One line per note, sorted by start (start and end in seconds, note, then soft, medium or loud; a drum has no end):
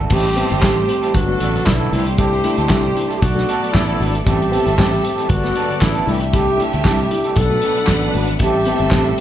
0.00 0.11 A3 soft
0.00 0.12 D4 soft
0.00 0.12 F#4 medium
0.00 0.12 A4 medium
0.10 0.42 A1 loud
0.10 0.25 A2 medium
0.10 0.25 E3 medium
0.10 0.32 G3 medium
0.10 1.14 A3 medium
0.10 1.13 A3 medium
0.10 1.14 C4 medium
0.10 0.25 C4 medium
0.10 0.25 E4 loud
0.10 1.14 G4 medium
0.10 0.60 G4 loud
0.10 1.14 G4 medium
0.10 0.24 A4 loud
0.10 1.13 C5 loud
0.10 kick loud
0.10 crash medium
0.25 muted clean electric guitar stroke medium
0.25 closed hi-hat soft
0.36 0.51 G3 medium
0.36 0.50 B3 loud
0.36 0.50 C4 medium
0.36 0.51 C4 medium
0.36 0.50 E4 medium
0.36 0.49 G4 loud
0.36 0.49 A4 medium
0.36 closed hi-hat medium
0.50 0.62 G1 loud
0.50 0.61 G3 medium
0.50 0.56 C4 soft
0.50 0.61 C4 medium
0.50 0.62 E4 medium
0.50 0.55 G4 medium
0.50 0.63 A4 medium
0.50 closed hi-hat soft
0.62 0.83 A1 loud
0.62 0.84 G3 medium
0.62 0.77 C4 medium
0.62 0.76 E4 loud
0.62 0.77 G4 medium
0.62 1.16 G4 medium
0.62 0.76 A4 loud
0.62 kick loud
0.62 snare loud
0.62 clap loud
0.76 0.89 A2 medium
0.76 0.89 E3 medium
0.76 muted clean electric guitar stroke soft
0.88 1.03 C4 medium
0.88 1.03 G4 medium
0.88 muted clean electric guitar stroke soft
0.88 closed hi-hat medium
1.02 1.14 G3 medium
1.02 1.14 C4 medium
1.02 1.15 E4 medium
1.02 1.15 A4 medium
1.02 closed hi-hat medium
1.14 1.35 G1 loud
1.14 1.92 F#3 medium
1.14 4.23 D4 medium
1.14 1.92 D4 medium
1.14 1.92 F#4 medium
1.14 1.67 F#4 loud
1.14 1.92 A4 medium
1.14 1.92 A4 loud
1.14 1.92 B4 medium
1.14 muted clean electric guitar stroke soft
1.14 kick loud
1.14 closed hi-hat medium
1.27 1.40 A3 medium
1.27 1.40 B3 medium
1.27 1.41 F#4 medium
1.27 muted clean electric guitar stroke soft
1.39 1.62 A1 medium
1.39 1.61 F#3 medium
1.39 1.54 B3 medium
1.39 1.54 D4 loud
1.39 1.53 A4 loud
1.39 closed hi-hat medium
1.53 1.66 G2 medium
1.53 1.66 D3 medium
1.53 muted clean electric guitar stroke soft
1.53 closed hi-hat soft
1.65 1.87 B1 loud
1.65 1.73 B3 soft
1.65 2.06 E4 loud
1.65 1.72 F#4 soft
1.65 muted clean electric guitar stroke soft
1.65 kick loud
1.65 snare loud
1.65 clap medium
1.79 1.92 G2 medium
1.79 1.93 D3 medium
1.79 1.91 F#3 medium
1.79 1.92 B3 medium
1.79 1.91 D4 medium
1.79 1.93 A4 medium
1.91 2.45 C2 loud
1.91 3.21 C3 medium
1.91 3.21 G3 medium
1.91 2.06 A3 medium
1.91 2.09 A3 medium
1.91 5.27 A3 medium
1.91 3.21 A3 medium
1.91 2.06 D4 medium
1.91 2.05 D4 medium
1.91 2.06 E4 medium
1.91 2.05 E4 medium
1.91 3.21 E4 medium
1.91 3.21 G4 medium
1.91 2.05 B4 medium
1.91 3.21 C5 medium
1.91 open hi-hat medium
2.05 muted clean electric guitar stroke medium
2.05 closed hi-hat medium
2.17 2.32 C3 medium
2.17 2.32 G3 medium
2.17 2.39 A3 medium
2.17 2.31 D4 medium
2.17 2.31 E4 medium
2.17 2.66 G4 loud
2.17 2.30 A4 medium
2.17 kick loud
2.17 closed hi-hat medium
2.31 muted clean electric guitar stroke soft
2.31 closed hi-hat soft
2.43 2.57 A3 medium
2.43 2.58 A3 loud
2.43 2.57 D4 medium
2.43 2.56 D4 medium
2.43 2.57 E4 medium
2.43 2.57 E4 loud
2.43 2.56 A4 medium
2.43 closed hi-hat medium
2.57 2.68 D2 medium
2.57 2.67 A3 medium
2.57 2.63 D4 soft
2.57 2.68 D4 medium
2.57 2.63 E4 soft
2.57 2.69 E4 medium
2.57 2.69 A4 medium
2.57 closed hi-hat soft
2.68 2.91 C2 loud
2.68 2.90 A3 medium
2.68 2.83 D4 medium
2.68 2.84 D4 medium
2.68 2.82 E4 medium
2.68 2.84 E4 medium
2.68 3.12 G4 loud
2.68 2.82 A4 medium
2.68 kick loud
2.68 snare loud
2.68 clap medium
2.83 2.96 C3 medium
2.83 2.96 G3 medium
2.83 muted clean electric guitar stroke soft
2.95 3.10 D4 medium
2.95 3.10 E4 medium
2.95 muted clean electric guitar stroke soft
2.95 closed hi-hat medium
3.08 3.20 A3 medium
3.08 3.20 D4 medium
3.08 3.22 E4 medium
3.08 3.21 A4 medium
3.08 closed hi-hat medium
3.16 3.23 G4 medium
3.21 3.43 B1 loud
3.21 4.25 B3 medium
3.21 4.24 B3 medium
3.21 3.74 F#4 loud
3.21 4.24 A4 medium
3.21 4.24 D5 medium
3.21 muted clean electric guitar stroke soft
3.21 kick loud
3.21 closed hi-hat medium
3.35 3.48 A3 medium
3.35 3.48 D4 medium
3.35 3.49 F#4 medium
3.35 muted clean electric guitar stroke soft
3.35 snare soft
3.47 3.69 A3 medium
3.47 3.62 D4 medium
3.47 3.61 F#4 medium
3.47 3.60 A4 loud
3.47 closed hi-hat medium
3.62 3.74 B2 medium
3.62 3.74 F#3 medium
3.62 muted clean electric guitar stroke medium
3.62 closed hi-hat medium
3.73 3.95 A1 loud
3.73 3.80 D4 soft
3.73 4.13 E4 loud
3.73 3.80 F#4 soft
3.73 kick loud
3.73 snare loud
3.73 clap medium
3.88 4.00 B2 medium
3.88 4.00 F#3 medium
3.88 3.99 A3 medium
3.88 3.99 D4 medium
3.88 4.00 F#4 medium
3.88 4.01 A4 medium
3.88 closed hi-hat soft
4.00 4.21 G#1 loud
4.00 4.17 A3 medium
4.00 4.14 A3 medium
4.00 4.13 D4 medium
4.00 4.14 D4 medium
4.00 4.14 F#4 medium
4.00 4.13 F#4 medium
4.00 4.13 B4 medium
4.00 open hi-hat medium
4.13 muted clean electric guitar stroke soft
4.13 closed hi-hat medium
4.24 4.57 A1 loud
4.24 4.40 A2 medium
4.24 4.40 E3 medium
4.24 4.47 G3 loud
4.24 5.28 C4 medium
4.24 4.39 C4 loud
4.24 4.38 E4 loud
4.24 4.73 G4 loud
4.24 5.28 G4 medium
4.24 5.27 A4 medium
4.24 4.38 A4 loud
4.24 5.27 E5 medium
4.24 kick loud
4.24 closed hi-hat medium
4.39 muted clean electric guitar stroke medium
4.39 closed hi-hat soft
4.51 4.66 G3 medium
4.51 4.65 B3 loud
4.51 4.64 C4 medium
4.51 4.65 C4 medium
4.51 4.64 E4 medium
4.51 4.65 G4 loud
4.51 4.64 A4 medium
4.51 closed hi-hat medium
4.65 4.76 G1 medium
4.65 4.75 G3 medium
4.65 4.71 C4 soft
4.65 4.76 C4 medium
4.65 4.76 E4 medium
4.65 4.71 G4 medium
4.65 4.77 A4 medium
4.65 closed hi-hat soft
4.76 4.99 A1 loud
4.76 4.98 G3 medium
4.76 4.92 C4 medium
4.76 4.91 E4 medium
4.76 5.30 G4 loud
4.76 4.92 G4 medium
4.76 4.90 A4 medium
4.76 kick loud
4.76 snare loud
4.76 clap loud
4.91 5.04 A2 medium
4.91 5.04 E3 medium
4.91 muted clean electric guitar stroke soft
4.91 closed hi-hat soft
5.02 5.17 C4 medium
5.02 5.17 G4 medium
5.02 muted clean electric guitar stroke soft
5.02 closed hi-hat medium
5.16 5.28 G3 medium
5.16 5.29 C4 medium
5.16 5.29 E4 medium
5.16 5.29 A4 medium
5.16 closed hi-hat medium
5.29 5.50 G1 loud
5.29 7.35 G3 medium
5.29 6.06 B3 medium
5.29 7.35 D4 medium
5.29 5.83 F#4 loud
5.29 6.07 F#4 medium
5.29 6.06 A4 medium
5.29 6.07 A4 medium
5.29 6.06 B4 medium
5.29 6.06 D5 loud
5.29 muted clean electric guitar stroke soft
5.29 kick loud
5.29 closed hi-hat medium
5.42 5.56 A3 medium
5.42 5.56 B3 medium
5.42 5.56 F#4 loud
5.42 muted clean electric guitar stroke soft
5.42 snare soft
5.42 closed hi-hat soft
5.55 5.77 F#3 medium
5.55 5.69 B3 medium
5.55 5.68 D4 loud
5.55 5.68 A4 loud
5.55 closed hi-hat medium
5.69 5.82 G2 medium
5.69 5.81 D3 medium
5.69 muted clean electric guitar stroke medium
5.69 closed hi-hat soft
5.81 6.02 A1 loud
5.81 5.87 B3 soft
5.81 6.21 E4 loud
5.81 5.87 F#4 soft
5.81 muted clean electric guitar stroke soft
5.81 kick loud
5.81 snare loud
5.81 clap loud
5.94 6.07 G2 medium
5.94 6.08 D3 medium
5.94 6.07 F#3 medium
5.94 6.07 B3 medium
5.94 6.06 D4 medium
5.94 6.08 A4 medium
5.94 closed hi-hat soft
6.07 6.59 C2 loud
6.07 7.36 C3 medium
6.07 6.24 G3 medium
6.07 6.21 A3 medium
6.07 7.35 A3 medium
6.07 8.39 A3 medium
6.07 6.21 D4 medium
6.07 6.21 E4 medium
6.07 7.36 E4 medium
6.07 7.35 G4 medium
6.07 6.21 B4 medium
6.07 7.35 E5 loud
6.07 open hi-hat medium
6.21 muted clean electric guitar stroke medium
6.21 closed hi-hat medium
6.32 6.46 C3 medium
6.32 6.47 G3 medium
6.32 6.54 G3 medium
6.32 6.47 D4 loud
6.32 6.47 E4 loud
6.32 6.62 G4 loud
6.32 6.46 A4 loud
6.32 kick loud
6.32 closed hi-hat medium
6.47 muted clean electric guitar stroke soft
6.57 6.74 G3 medium
6.57 6.72 A3 loud
6.57 6.70 D4 medium
6.57 6.74 D4 medium
6.57 6.70 E4 loud
6.57 6.73 E4 medium
6.57 6.72 A4 medium
6.57 closed hi-hat medium
6.72 6.83 D2 medium
6.72 6.84 G3 medium
6.72 6.77 D4 soft
6.72 6.84 D4 medium
6.72 6.77 E4 medium
6.72 6.85 E4 medium
6.72 6.85 A4 medium
6.72 closed hi-hat soft
6.84 7.05 C2 loud
6.84 7.06 G3 medium
6.84 6.99 D4 medium
6.84 6.99 E4 medium
6.84 7.39 G4 loud
6.84 6.98 A4 loud
6.84 kick loud
6.84 snare loud
6.84 clap medium
6.98 7.11 C3 medium
6.98 7.11 G3 medium
6.98 muted clean electric guitar stroke medium
6.98 closed hi-hat soft
7.11 7.25 D4 medium
7.11 7.25 E4 medium
7.11 muted clean electric guitar stroke soft
7.11 closed hi-hat medium
7.24 7.36 G3 medium
7.24 7.36 D4 medium
7.24 7.37 E4 medium
7.24 7.37 A4 medium
7.24 closed hi-hat medium
7.36 7.57 B1 loud
7.36 8.40 B3 medium
7.36 8.38 D4 medium
7.36 8.40 D4 medium
7.36 8.15 A4 loud
7.36 8.38 B4 medium
7.36 8.38 F#5 loud
7.36 muted clean electric guitar stroke soft
7.36 kick loud
7.36 closed hi-hat medium
7.50 7.62 A3 medium
7.50 7.63 D4 medium
7.50 7.63 F#4 medium
7.50 muted clean electric guitar stroke medium
7.62 7.84 F#3 medium
7.62 7.77 B3 medium
7.62 7.76 D4 loud
7.62 7.75 A4 loud
7.62 closed hi-hat medium
7.76 7.88 B2 medium
7.76 7.88 F#3 medium
7.76 muted clean electric guitar stroke soft
7.76 closed hi-hat soft
7.87 8.09 A1 loud
7.87 7.94 D4 soft
7.87 7.94 F#4 soft
7.87 muted clean electric guitar stroke soft
7.87 kick loud
7.87 snare loud
7.87 clap medium
8.01 8.14 B2 medium
8.01 8.14 F#3 medium
8.01 8.15 B3 medium
8.01 8.16 D4 medium
8.01 8.17 A4 medium
8.01 closed hi-hat soft
8.05 8.14 F#3 medium
8.14 8.35 G#1 loud
8.14 8.32 F#3 medium
8.14 8.29 A3 medium
8.14 8.30 B3 medium
8.14 8.29 D4 medium
8.14 8.29 F#4 medium
8.14 open hi-hat medium
8.18 8.29 B4 medium
8.27 muted clean electric guitar stroke medium
8.27 closed hi-hat medium
8.39 8.71 A1 loud
8.39 8.54 A2 medium
8.39 8.54 E3 medium
8.39 8.62 G3 medium
8.39 9.20 A3 medium
8.39 9.20 C4 medium
8.39 8.55 C4 medium
8.39 8.55 E4 medium
8.39 9.20 G4 medium
8.39 8.90 G4 loud
8.39 9.20 A4 medium
8.39 8.54 A4 loud
8.39 9.20 E5 loud
8.39 kick loud
8.39 closed hi-hat medium
8.56 muted clean electric guitar stroke soft
8.65 8.82 G3 medium
8.65 8.80 B3 medium
8.65 8.79 C4 medium
8.65 8.82 C4 medium
8.65 8.80 E4 medium
8.65 8.79 G4 loud
8.65 8.80 A4 medium
8.65 closed hi-hat medium
8.78 8.90 G1 medium
8.78 8.85 C4 soft
8.78 8.94 E4 medium
8.78 8.85 G4 soft
8.78 8.95 A4 medium
8.78 closed hi-hat soft
8.83 8.93 G3 medium
8.83 8.93 C4 medium
8.91 9.12 A1 loud
8.91 9.14 G3 medium
8.91 9.06 C4 medium
8.91 9.07 C4 loud
8.91 9.06 E4 medium
8.91 9.07 G4 medium
8.91 9.20 G4 medium
8.91 kick loud
8.91 snare loud
8.91 clap medium
8.96 9.05 A4 loud
9.07 9.19 A2 medium
9.07 9.19 E3 medium
9.07 muted clean electric guitar stroke soft